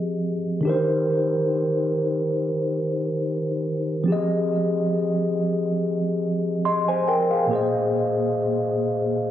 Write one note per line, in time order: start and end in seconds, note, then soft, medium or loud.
0.00 0.16 F3 medium
0.00 0.17 C4 medium
0.00 0.18 G4 medium
0.00 0.19 G#4 medium
0.00 0.20 D#5 medium
0.61 4.02 D#3 medium
0.61 0.71 D4 medium
0.65 4.04 G4 medium
0.65 4.05 A#4 medium
0.69 4.06 D#4 medium
0.69 4.06 C5 medium
4.04 7.45 F3 medium
4.04 7.46 C4 medium
4.08 6.61 G4 medium
4.08 6.62 G#4 medium
4.12 6.63 D#5 medium
6.65 6.88 D#5 medium
6.65 6.87 C6 medium
6.88 7.07 C5 medium
6.88 7.07 G#5 medium
7.08 7.30 A#4 medium
7.08 7.30 G5 medium
7.31 7.50 G#4 medium
7.31 7.72 F5 medium
7.47 9.31 A#2 medium
7.47 9.31 A#3 medium
7.51 9.31 G#4 medium
7.51 9.31 C5 medium
7.55 9.31 D#5 medium